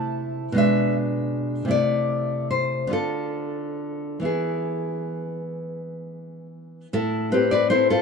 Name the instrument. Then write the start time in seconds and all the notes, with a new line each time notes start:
nylon-string guitar
Already playing: C3 A3 E4 A5
0.52 B2 G#3
0.56 D4 E5
1.65 C3 A3 E4
1.71 D5
2.51 C5
2.87 D3 B3 F4
2.93 A4
4.20 E3 B3 E4
4.25 G#4
6.93 A2 E4 A4
7.32 C4 G4 B4
7.51 B4 D5
7.70 C4 E4 A4 C5
7.90 F4 A4